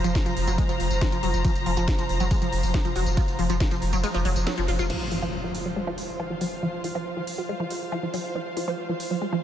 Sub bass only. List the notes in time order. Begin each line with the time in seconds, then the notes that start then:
0.04 F1
0.26 F1
0.37 F1
0.48 F1
0.69 F1
0.80 F1
0.91 F1
1.12 F1
1.23 F1
1.34 F1
1.56 F1
1.66 F1
1.77 F1
1.99 F1
2.09 F1
2.20 F1
2.42 F1
2.52 F1
2.63 F1
2.85 F1
2.96 F1
3.06 F1
3.28 F1
3.39 F1
3.50 F1
3.71 F1
3.82 F1
3.93 F1
4.14 F1
4.25 F1
4.36 F1
4.58 F1
4.68 F1
4.79 F1